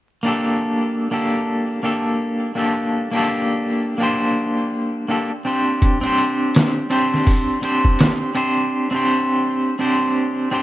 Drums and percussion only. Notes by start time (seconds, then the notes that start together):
5.82 kick, closed hi-hat
6.03 closed hi-hat
6.18 closed hi-hat
6.55 snare, closed hi-hat
6.91 closed hi-hat
7.14 snare
7.27 kick, open hi-hat
7.63 closed hi-hat
7.85 kick
7.99 snare, closed hi-hat
8.35 closed hi-hat